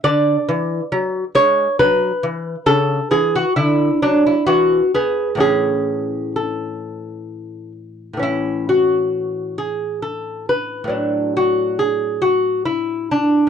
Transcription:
<<
  \new Staff \with { instrumentName = "Lute" } { \time 3/4 \key a \major \tempo 4 = 67 d''4. cis''8 b'4 | a'8 gis'16 fis'16 e'8 d'16 e'16 fis'8 gis'8 | gis'4 a'4. r8 | e'8 fis'4 gis'8 a'8 b'8~ |
b'8 fis'8 gis'8 fis'8 e'8 d'8 | }
  \new Staff \with { instrumentName = "Lute" } { \clef bass \time 3/4 \key a \major d8 e8 fis8 gis8 fis8 e8 | cis8 e8 d8 fis8 e8 b8 | <a, e cis'>2. | <a, e cis'>2. |
<a, fis d'>2. | }
>>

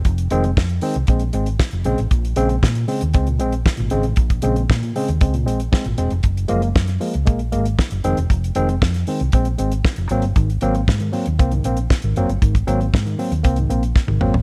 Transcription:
<<
  \new Staff \with { instrumentName = "Tine electric piano" } { \clef bass \time 4/4 \key bes \minor \tempo 4 = 116 r8 <ees aes c'>16 <aes c'>16 r8 <ees aes c'>16 r16 <aes c'>16 r16 <aes c'>16 r16 <aes c'>16 r16 <des aes c'>16 r16 | bes,16 r16 <des aes c'>16 <aes c'>16 <aes c'>16 bes,16 <des aes c'>16 r16 <aes c'>16 bes,16 <aes c'>16 r16 <aes c'>16 bes,16 <des aes c'>16 r16 | bes,16 r16 <des aes c'>16 <aes c'>16 <aes c'>16 bes,16 <des aes c'>16 r16 <aes c'>16 bes,16 <aes c'>16 r16 <aes c'>16 bes,16 <aes c'>16 r16 | r8 <f aes bes>16 <aes bes>16 <aes bes>16 r16 <f aes bes>16 r16 <aes bes>16 r16 <aes bes>16 r16 <aes bes>16 r16 <ees aes c'>16 r16 |
r8 <ees aes c'>16 <aes c'>16 <aes c'>16 r16 <ees aes c'>16 r16 <aes c'>16 r16 <aes c'>16 r16 <aes c'>16 r16 <ges bes c'>16 r16 | <aes, ees>16 r16 <ges bes c'>16 <bes c'>16 <bes c'>16 <aes, ees>16 <ges bes c'>16 r16 <bes c'>16 <aes, ees>16 <bes c'>16 r16 <bes c'>16 <aes, ees>16 <ges bes c'>16 r16 | <aes, ees>16 r16 <ges bes c'>16 <bes c'>16 <bes c'>16 <aes, ees>16 <ges bes c'>16 r16 <bes c'>16 <aes, ees>16 <bes c'>16 r16 <bes c'>16 <aes, ees>16 <ges bes c'>16 r16 | }
  \new Staff \with { instrumentName = "Fingered electric bass" } { \clef bass \time 4/4 \key bes \minor f,,8 f,,8 f,8 r16 c,16 bes,,8 aes,,8 r16 f,,16 bes,,16 a,,16 | bes,,8 bes,,8 bes,8 r16 ees,16 des,8 bes,,8 r16 aes,,16 aes,,16 a,,16 | bes,,8 bes,,8 bes,8 r16 ees,16 des,8 bes,,8 r16 aes,,16 e,,16 f,,16 | ges,,8 ges,,8 ges,8 r16 des,16 bes,,8 aes,,8 r16 ges,,16 f,,16 e,,16 |
f,,8 f,,8 f,8 r16 c,16 bes,,8 aes,,8 r16 f,,16 aes,,16 g,,16 | aes,,8 aes,,8 aes,8 r16 ees,16 c,8 bes,,8 r16 aes,,16 ges,,16 g,,16 | aes,,8 aes,,8 aes,8 r16 ees,16 c,8 bes,,8 r16 aes,,16 aes,,16 a,,16 | }
  \new DrumStaff \with { instrumentName = "Drums" } \drummode { \time 4/4 <hh bd>16 hh16 hh16 hh16 <bd sn>16 hh16 hho16 hh16 <hh bd>16 hh16 hh16 hh16 <bd sn>16 hh16 hh16 hh16 | <hh bd>16 hh16 hh16 hh16 <bd sn>16 hh16 hho16 hh16 <hh bd>16 hh16 hh16 hh16 <bd sn>16 hh16 hh16 hh16 | <hh bd>16 <hh bd>16 hh16 hh16 <bd sn>16 hh16 hho16 hh16 <hh bd>16 hh16 hh16 hh16 <bd sn>16 hh16 hh16 hh16 | <hh bd>16 hh16 hh16 hh16 <bd sn>16 <hh sn>16 hho16 hh16 <hh bd>16 hh16 hh16 hh16 <bd sn>16 hh16 hh16 hh16 |
<hh bd>16 hh16 hh16 hh16 <bd sn>16 <hh sn>16 hho16 hh16 <hh bd>16 hh16 hh16 hh16 <bd sn>16 hh16 hh16 hh16 | <hh bd>16 hh16 hh16 hh16 <bd sn>16 hh16 hho16 hh16 <hh bd>16 hh16 hh16 hh16 <bd sn>16 hh16 hh16 hh16 | <hh bd>16 <hh bd>16 hh16 hh16 <bd sn>16 hh16 hho16 hh16 <hh bd>16 hh16 hh16 hh16 <bd sn>16 tommh16 toml16 tomfh16 | }
>>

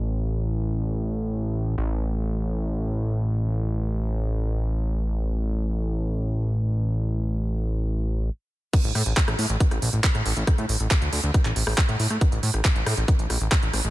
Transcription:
<<
  \new Staff \with { instrumentName = "Analog synth bass" } { \clef bass \time 4/4 \key d \minor \tempo 4 = 138 a,,1 | a,,1~ | a,,1~ | a,,1~ |
a,,2. r4 | r16 a,,16 a,16 a,,16 r16 a,,16 a,16 a,,16 r16 a,,16 bes,,16 a,,16 r16 a,,16 a,,16 a,,16 | r16 a,16 a,,16 a,,16 r16 d,16 d,16 d,16 r16 a,,16 a,,16 a,,16 r16 a,16 a,16 a,16 | r16 a,,16 a,16 a,,16 r16 a,,16 a,16 a,,16 r16 a,,16 bes,,16 a,,16 r16 a,,16 a,,16 a,,16 | }
  \new DrumStaff \with { instrumentName = "Drums" } \drummode { \time 4/4 r4 r4 r4 r4 | r4 r4 r4 r4 | r4 r4 r4 r4 | r4 r4 r4 r4 |
r4 r4 r4 r4 | <cymc hh bd>16 hh16 <hho ss>16 hh16 <hc hh bd>16 <hh ss>16 hho16 hh16 <hh bd>16 <hh ss>16 hho16 hh16 <hc hh bd>16 <hh ss>16 hho16 hh16 | <hh bd ss>16 hh16 hho16 hh16 <hc hh bd ss>16 hh16 hho16 hh16 <hh bd ss>16 <hc hh>16 hho16 <hho ss>16 <hc bd>16 hh16 hho16 <hh ss>16 | <hh bd>16 hh16 hho16 <hh ss>16 <hc hh bd>16 hh16 <hho ss>16 hh16 <hh bd>16 hh16 <hho ss>16 hh16 <hc hh bd>16 hh16 <hho ss>16 hh16 | }
>>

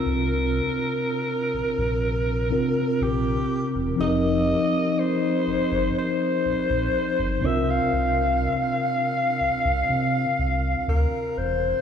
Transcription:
<<
  \new Staff \with { instrumentName = "Alto saxophone" } { \time 4/4 \key c \phrygian \tempo 4 = 61 bes'2. g'8. r16 | ees''4 c''4 c''4. e''16 f''16~ | f''2. bes'8 c''8 | }
  \new Staff \with { instrumentName = "Tine electric piano" } { \time 4/4 \key c \phrygian <c c' d' f' bes'>2~ <c c' d' f' bes'>8 <c c' d' f' bes'>4. | <f c' ees' g' a' bes'>2.~ <f c' ees' g' a' bes'>8 <c c' d' f' bes'>8~ | <c c' d' f' bes'>2.~ <c c' d' f' bes'>8 r8 | }
  \new Staff \with { instrumentName = "Sub bass" } { \clef bass \time 4/4 \key c \phrygian c,8. r8. bes,,16 bes,,4 r16 bes,,8 r16 e,,16 | f,,8. r8. g,,16 g,,16 r8 bes,,16 bes,,16 r16 g,,16 c,8 | c,8. r8. c,16 c,16 c8 c,8 d,16 r16 e,,8 | }
>>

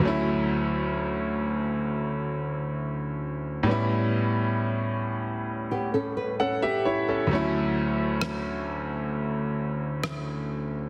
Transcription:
<<
  \new Staff \with { instrumentName = "Nylon-string guitar" } { \time 4/4 \key d \major \tempo 4 = 66 r1 | r2 r16 <b g'>16 <cis' a'>16 b'16 <cis' a'>16 <b g'>8. | r1 | }
  \new Staff \with { instrumentName = "Grand piano" } { \time 4/4 \key d \major r1 | r2. <a' fis''>16 <g' e''>16 <e' cis''>16 <cis' a'>16~ | <cis' a'>16 r2. r8. | }
  \new Staff \with { instrumentName = "Grand piano" } { \time 4/4 \key d \major <d, fis a cis' e'>1 | <a, g b cis' e'>2.~ <a, g b cis' e'>8 r8 | <d, fis a cis' e'>1 | }
  \new DrumStaff \with { instrumentName = "Drums" } \drummode { \time 4/4 r4 r4 r4 r4 | r4 r4 r4 r4 | r4 ss4 r4 ss4 | }
>>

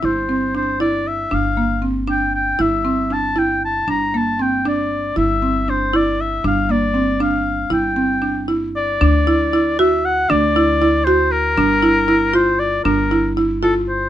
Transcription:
<<
  \new Staff \with { instrumentName = "Oboe" } { \time 5/8 \key g \dorian \tempo 4 = 117 c''4 c''8 d''8 e''8 | f''4 r8 g''8 g''8 | e''4 a''8 g''8 a''8 | bes''8 a''8 g''8 d''4 |
e''4 c''8 d''8 e''8 | f''8 d''4 f''4 | g''4. r8 d''8~ | d''4. e''8 fis''8 |
d''4. c''8 bes'8~ | bes'4. c''8 d''8 | bes'4 r8 a'8 c''8 | }
  \new Staff \with { instrumentName = "Marimba" } { \time 5/8 \key g \dorian e'8 c'8 d'8 e'4 | d'8 bes8 c'8 d'4 | e'8 c'8 d'8 e'4 | d'8 bes8 c'8 d'4 |
e'8 c'8 d'8 e'4 | d'8 bes8 c'8 d'4 | e'8 c'8 d'8 e'4 | d'8 e'8 e'8 fis'4 |
d'8 e'8 e'8 fis'4 | d'8 e'8 e'8 f'4 | d'8 e'8 e'8 f'4 | }
  \new Staff \with { instrumentName = "Upright bass" } { \clef bass \time 5/8 \key g \dorian g,,2~ g,,8 | g,,2~ g,,8 | g,,2~ g,,8 | g,,2~ g,,8 |
g,,2~ g,,8 | g,,2~ g,,8 | g,,2~ g,,8 | d,2~ d,8 |
d,2~ d,8 | g,,2~ g,,8 | g,,2~ g,,8 | }
>>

